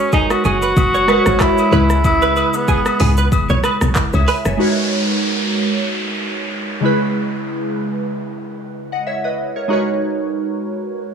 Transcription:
Already playing: G#3 F#4 A#4 B4 C#5
0.12 D#4 G#4, kick, low woodblock, shaker
0.30 F#4, cross-stick, high agogo, shaker
0.45 F#1 F#4 G#4, shaker
0.62 B4, shaker
0.77 F#1, kick, high agogo, shaker
0.94 C#5, shaker
1.07 G#3 F#4 A#4 B4 C5, cross-stick, high agogo, shaker
1.16 C#5
1.26 G#1, cross-stick, shaker
1.40 E4, kick, cross-stick, clap, shaker
1.58 high agogo, shaker
1.71 C#2 C#3 G#3 E4 B4, mid tom, shaker
1.90 cross-stick, shaker
2.04 E4, kick, high agogo, shaker
2.22 B4, shaker
2.36 B4, high agogo, shaker
2.54 B3, shaker
2.68 G#4, kick, low woodblock, shaker
2.86 cross-stick, high agogo, shaker
3.00 C#2 G#4, mid tom, open hi-hat, shaker
3.17 B4, shaker
3.32 kick, high agogo, shaker
3.49 B1 C#5, shaker
3.64 B4, cross-stick, high agogo, shaker
3.81 B1, cross-stick, shaker
3.95 kick, cross-stick, clap, shaker
4.13 C#2 C#5 E5, high agogo, shaker
4.28 B4 E5 G#5, open hi-hat, shaker
4.45 F#1 C#5 E5, cross-stick, shaker
4.57 G#3 D#4 F#4 A#4, downlifter
4.61 B4 C#5
6.80 C#3 G#3 E4
6.85 B4
8.92 D#5 F#5
9.07 C#5 E5
9.24 B4 D#5
9.56 A#4 C#5
9.68 G#3 D#4 F#4 A#4
9.72 B4 C#5

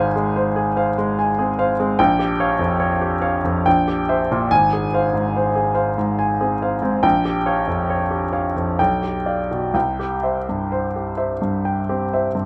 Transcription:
Already playing: G#1 G#4 C5 F5 G#5
0.16 G#3
0.36 C5
0.56 G#4
0.77 C5 F5
0.98 G#3
1.19 G#5
1.39 C4 G#4
1.59 C5 F5
1.80 G#3 C4
1.99 A#1 G5
2.19 G4
2.40 C#5 F5
2.59 F2
2.80 C#5
3.02 G4
3.22 C#5 F5
3.44 F2
3.66 A#1 G5
3.88 G4
4.09 C5 E5
4.32 A#2
4.51 G#1 G#5
4.73 G#4
4.94 C5 F5
5.14 G#2
5.36 C5
5.55 G#4
5.75 C5 F5
5.98 G#2
6.19 G#5
6.41 C4 G#4
6.62 C5 F5
6.82 G#2 C4
7.03 A#1 G5
7.25 G4
7.46 C#5 F5
7.67 F2
7.90 C#5
8.11 G4
8.32 C#5 F5
8.56 F2
8.79 B1 G5
9.02 G4
9.26 D5 F5
9.51 B2
9.74 C2 G5
9.99 G4
10.23 C5 E5
10.49 G2
10.72 C5
10.96 G4
11.17 C5 E5
11.42 G2
11.65 G5
11.89 C4 G4
12.13 C5 E5
12.35 G2 C4

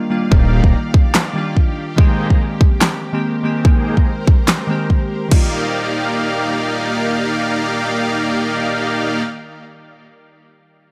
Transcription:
Already playing: D#3 G3 A#3 D4 F4 G4 D5 F5
0.10 D#3 G3 A#3 D4 F4
0.29 D#1 D#3 G3 A#3 D4 D#4 F4 G4 D5 F5, kick
0.63 D#1 A#3 D#4 G4 D5 A#5, kick
0.94 kick
1.15 snare, clap
1.33 D#3 G3 A#3 D4
1.38 F4
1.57 kick
1.96 D#3 G#3 A#3 C4 D#4 G#4 A#4 C5 G5, kick
2.00 G4
2.30 A#3 D#4 G#4 C5 A#5, kick
2.61 kick
2.81 snare, clap
3.13 D#3 G#3 A#3 C4 G4
3.43 D#3 G#3 A#3 C4 G4
3.63 D#3 G#3 A#3 C4 D#4 G#4 C5 G5, kick
3.67 G4
3.97 A#3 D#4 G#4 C5 A#5, kick
4.27 kick
4.48 snare, clap
4.67 D#3 G#3 A#3 C4
4.71 G4
4.90 kick
5.28 D#3 G3 A#3 D#4 G4 A#4 D5 F5, kick, crash
5.33 F4 D5

